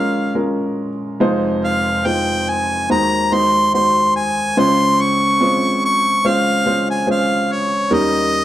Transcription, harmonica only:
0.00 0.35 F5 medium
1.64 2.08 F5 medium
2.06 2.50 G5 medium
2.49 2.90 G#5 medium
2.91 3.35 A#5 medium
3.33 3.74 C6 medium
3.74 4.12 C6 medium
4.16 4.60 G#5 medium
4.59 5.02 C6 medium
5.01 5.83 C#6 medium
5.85 6.29 C#6 medium
6.27 6.88 F5 medium
6.90 7.07 G#5 medium
7.11 7.53 F5 medium
7.52 7.95 C#5 medium
7.94 8.44 D#5 medium

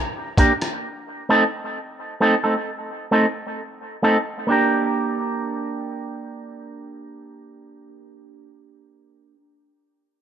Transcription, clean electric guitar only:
0.37 0.51 A#3 medium
0.37 0.51 D4 medium
0.37 0.52 G4 medium
0.37 0.52 A#4 medium
1.29 1.42 A3 medium
1.29 1.43 C4 medium
1.29 1.43 D#4 loud
1.29 1.43 A4 loud
2.20 2.34 A3 medium
2.20 2.34 C4 medium
2.20 2.34 D#4 medium
2.20 2.35 A4 medium
2.44 2.55 A3 soft
2.44 2.54 C4 medium
2.44 2.54 D#4 soft
2.44 2.54 A4 medium
3.11 3.25 A3 medium
3.11 3.25 C4 medium
3.11 3.25 D#4 medium
3.11 3.26 A4 medium
4.03 4.16 A3 medium
4.03 4.16 C4 medium
4.03 4.17 D#4 medium
4.03 4.17 A4 medium
4.47 9.34 A#3 medium
4.47 9.36 D4 medium
4.47 9.37 G4 medium
4.52 9.39 A#4 medium

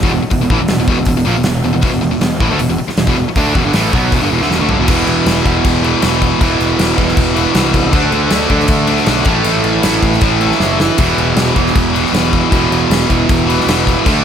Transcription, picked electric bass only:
0.03 0.12 E1 medium
0.12 0.21 E1 medium
0.22 muted picked electric bass stroke soft
0.32 0.40 E1 medium
0.41 0.49 E1 medium
0.50 0.59 A1 loud
0.60 0.69 E1 medium
0.70 0.79 E1 medium
0.80 0.87 E1 medium
0.87 0.97 E1 medium
0.99 1.06 E1 medium
1.06 1.16 E1 medium
1.18 1.27 E1 medium
1.27 1.36 A#1 loud
1.37 1.46 E1 medium
1.46 1.64 E1 medium
1.65 1.73 E1 medium
1.74 1.82 E1 medium
1.83 1.92 E1 loud
1.94 2.02 E1 medium
2.03 2.11 E1 medium
2.12 2.21 E1 medium
2.23 2.40 E1 medium
2.40 2.50 A1 medium
2.51 2.59 D2 loud
2.59 2.68 E1 medium
2.69 2.78 E1 medium
2.80 muted picked electric bass stroke soft
2.88 muted picked electric bass stroke soft
2.97 3.07 E1 medium
3.07 3.16 E1 medium
3.18 3.27 E1 medium
3.28 muted picked electric bass stroke soft
3.36 3.54 D2 medium
3.55 3.64 E1 loud
3.65 3.74 G1 medium
3.74 3.92 A1 loud
3.93 4.11 B1 loud
4.12 4.21 E1 loud
4.21 4.30 G1 medium
4.31 4.40 E1 loud
4.40 4.49 D2 medium
4.50 4.59 E1 medium
4.60 4.68 D2 loud
4.69 4.78 G1 loud
4.79 4.88 E1 medium
4.88 5.02 E1 loud
5.07 5.21 E1 loud
5.26 5.40 E1 loud
5.45 5.59 E1 medium
5.65 5.93 E1 loud
6.03 6.30 E1 loud
6.41 6.55 E1 loud
6.60 6.73 E1 medium
6.78 6.92 E1 loud
6.98 7.12 E1 loud
7.17 7.45 E1 loud
7.55 7.93 C2 loud
7.93 8.07 D2 medium
8.12 8.26 D2 medium
8.31 8.45 D2 medium
8.50 8.64 D2 medium
8.68 8.96 D2 loud
9.07 9.21 B1 loud
9.26 9.40 A1 loud
9.45 9.59 A1 loud
9.65 9.78 A1 medium
9.84 9.98 A1 loud
10.02 10.16 A1 loud
10.22 10.50 A1 medium
10.60 10.88 F#1 medium
10.99 11.13 E1 loud
11.18 11.32 E1 medium
11.37 11.51 E1 loud
11.56 11.70 E1 medium
11.76 12.04 E1 loud
12.13 12.41 E1 medium
12.52 12.66 E1 loud
12.70 12.85 E1 medium
12.90 13.04 E1 loud
13.10 13.24 E1 medium
13.30 13.58 E1 loud
13.67 13.95 E1 medium
14.06 14.20 D2 medium

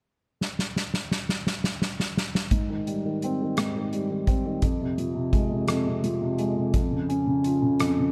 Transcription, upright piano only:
2.52 3.57 G#2 soft
2.69 3.03 D#3 soft
2.87 3.91 G3 soft
3.05 3.40 D#3 soft
3.24 4.26 C4 soft
3.42 3.74 D#3 soft
3.58 4.60 G#2 soft
3.76 4.08 D#3 soft
3.93 4.61 G3 soft
4.09 4.44 D#3 soft
4.27 4.62 C4 soft
4.46 4.63 D#3 soft
4.63 5.66 F2 medium
4.81 5.13 C3 soft
4.97 6.02 F3 soft
5.15 5.49 C3 soft
5.33 6.37 G#3 soft
5.51 5.84 C3 soft
5.68 6.71 F2 soft
5.86 6.20 C3 soft
6.04 6.72 F3 soft
6.21 6.55 C3 soft
6.39 6.73 G#3 soft
6.56 6.74 C3 soft
6.74 7.78 F2 medium
6.91 7.25 C#3 soft
7.09 8.12 C#4 soft
7.26 7.61 C#3 soft
7.44 8.12 F4 soft
7.62 7.97 C#3 soft
7.80 8.12 F2 soft
7.98 8.12 C#3 soft

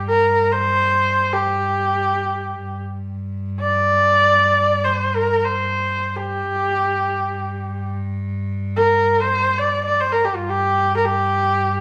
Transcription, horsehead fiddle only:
0.08 0.53 A#4 medium
0.52 1.34 C5 medium
1.33 2.81 G4 medium
3.60 4.86 D5 loud
4.84 5.17 C5 medium
5.15 5.46 A#4 medium
5.45 6.18 C5 medium
6.16 7.89 G4 medium
8.77 9.22 A#4 medium
9.20 9.60 C5 medium
9.58 9.84 D5 medium
9.85 10.02 D5 medium
10.00 10.14 C5 medium
10.12 10.26 A#4 medium
10.24 10.37 G4 medium
10.36 10.51 F4 medium
10.49 10.96 G4 medium
10.97 11.07 A#4 medium
11.05 11.81 G4 medium

